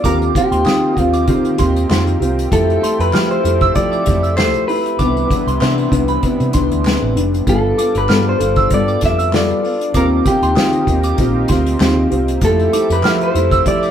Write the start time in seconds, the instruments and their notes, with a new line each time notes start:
Already playing: analog synth pad F4
0.03 fingered electric bass D#2, nylon-string guitar D#3 C4 F4 G4, analog synth pad D#3 A#3 C4 G4, clean electric guitar A#4, synth bell D6, kick, closed hi-hat
0.22 closed hi-hat
0.34 nylon-string guitar C4 F4 G4, clean electric guitar G4, kick, closed hi-hat
0.52 fingered electric bass D#2, synth bell C6, closed hi-hat
0.65 nylon-string guitar D#3 C4 F4 G4, fingered electric bass D#3, synth bell D#6, snare, clap
0.96 fingered electric bass D#2, nylon-string guitar C4 F4 G4, clean electric guitar F4, kick, closed hi-hat
1.13 synth bell D6, closed hi-hat
1.27 nylon-string guitar D#3 C4 F4 G4, fingered electric bass D#3, kick, closed hi-hat
1.45 closed hi-hat
1.58 fingered electric bass D#2, nylon-string guitar C4 F4 G4, synth bell C6, kick, closed hi-hat
1.76 closed hi-hat
1.89 fingered electric bass F2, nylon-string guitar D#3 C4 F4 G4, snare, clap
2.07 closed hi-hat
2.20 fingered electric bass C2, nylon-string guitar C4 F4 G4, closed hi-hat
2.39 closed hi-hat
2.51 fingered electric bass F2, nylon-string guitar F3 A3 E4 G4, analog synth pad F3 E4 A4, clean electric guitar A4, kick, closed hi-hat
2.70 closed hi-hat
2.82 nylon-string guitar A3 E4 G4, synth bell C6, closed hi-hat
2.99 fingered electric bass F2, clean electric guitar B4, closed hi-hat
3.13 nylon-string guitar F3 A3 E4 G4, fingered electric bass F3, synth bell F6, snare, clap
3.31 clean electric guitar C5, closed hi-hat
3.44 fingered electric bass F2, nylon-string guitar A3 E4 G4, closed hi-hat
3.61 synth bell E6, kick, closed hi-hat
3.74 nylon-string guitar F3 A3 E4 G4, fingered electric bass F3, clean electric guitar D5, kick, closed hi-hat
3.92 synth bell D6, closed hi-hat
4.06 fingered electric bass F2, nylon-string guitar A3 E4 G4, kick, closed hi-hat
4.23 synth bell E6, closed hi-hat
4.37 nylon-string guitar F3 A3 E4 G4, clean electric guitar C5, snare, clap
4.54 closed hi-hat
4.68 nylon-string guitar A3 E4 G4, clean electric guitar B4, open hi-hat
4.86 closed hi-hat
4.98 fingered electric bass C2, analog synth pad C3 G3 B3 D4, nylon-string guitar C3 E3 B3 D4, synth bell D6, kick, closed hi-hat
5.17 closed hi-hat
5.30 nylon-string guitar E3 D4, kick, closed hi-hat
5.47 fingered electric bass C2, synth bell C6, closed hi-hat
5.60 nylon-string guitar C3 E3 B3 D4, fingered electric bass C3, synth bell C6, snare, clap
5.78 closed hi-hat
5.91 fingered electric bass C2, nylon-string guitar E3 B3 D4, kick, closed hi-hat
6.08 synth bell B5, closed hi-hat
6.23 nylon-string guitar C3 E3 B3 D4, kick, closed hi-hat
6.40 fingered electric bass C3, closed hi-hat
6.53 fingered electric bass C2, nylon-string guitar E3 B3 D4, synth bell C6, kick, closed hi-hat
6.71 fingered electric bass D2, closed hi-hat
6.85 nylon-string guitar C3 E3 B3 D4, snare, clap
7.02 fingered electric bass A1
7.16 fingered electric bass F1, nylon-string guitar E3 B3 D4, closed hi-hat
7.34 closed hi-hat
7.47 fingered electric bass G1, nylon-string guitar G3 B3 F4 A4, analog synth pad G3 F4 A4 D5, clean electric guitar A4, kick, closed hi-hat
7.77 nylon-string guitar B3 F4 A4, synth bell D6, closed hi-hat
7.95 fingered electric bass G1, clean electric guitar B4, closed hi-hat
8.09 fingered electric bass G2, nylon-string guitar G3 B3 F4 A4, synth bell F6, snare, clap
8.29 clean electric guitar C5
8.40 fingered electric bass G1, nylon-string guitar F4 A4, closed hi-hat
8.56 synth bell E6, kick, closed hi-hat
8.70 fingered electric bass G2, nylon-string guitar G3 B3 F4 A4, clean electric guitar D5, kick, closed hi-hat
8.88 synth bell D6, closed hi-hat
9.01 fingered electric bass F2, nylon-string guitar B3 F4 A4, kick, snare, closed hi-hat
9.05 clean electric guitar E5
9.19 synth bell E6, closed hi-hat
9.32 nylon-string guitar G3 B3 F4 A4, snare, clap
9.36 clean electric guitar D5
9.50 closed hi-hat
9.62 nylon-string guitar B3 F4 A4, open hi-hat
9.81 closed hi-hat
9.94 fingered electric bass D#2, nylon-string guitar D#3 C4 F4 G4, analog synth pad A#3 C4 D#4 G4, clean electric guitar A#4, synth bell D6, kick, closed hi-hat
10.25 nylon-string guitar C4 F4 G4, clean electric guitar G4, kick, closed hi-hat
10.42 fingered electric bass D#2, synth bell C6, closed hi-hat
10.55 nylon-string guitar D#3 C4 F4 G4, fingered electric bass D#3, synth bell D#6, snare, clap
10.73 closed hi-hat
10.87 fingered electric bass D#2, nylon-string guitar C4 F4 G4, kick, closed hi-hat
11.03 synth bell D6, closed hi-hat
11.18 fingered electric bass A#1, nylon-string guitar D#3 C4 F4 G4, kick, closed hi-hat
11.48 fingered electric bass D2, nylon-string guitar C4 F4 G4, synth bell C6, kick, snare, closed hi-hat
11.66 closed hi-hat
11.80 fingered electric bass D#2, nylon-string guitar D#3 C4 F4 G4, snare, clap
12.10 fingered electric bass C2, nylon-string guitar C4 F4 G4, closed hi-hat
12.28 closed hi-hat
12.41 fingered electric bass F2, nylon-string guitar F3 A3 E4 G4, analog synth pad F3 E4 G4 A4, clean electric guitar A4, kick, closed hi-hat
12.59 closed hi-hat
12.73 nylon-string guitar A3 E4 G4, synth bell D6, closed hi-hat
12.90 fingered electric bass F2, clean electric guitar B4, closed hi-hat
13.03 nylon-string guitar F3 A3 E4 G4, fingered electric bass F3, synth bell F6, snare, clap
13.21 clean electric guitar C5, closed hi-hat
13.34 fingered electric bass F2, nylon-string guitar A3 E4 G4, closed hi-hat
13.51 synth bell E6, kick, closed hi-hat
13.65 nylon-string guitar F3 A3 E4 G4, fingered electric bass F3, clean electric guitar D5, kick, closed hi-hat
13.83 synth bell D6, closed hi-hat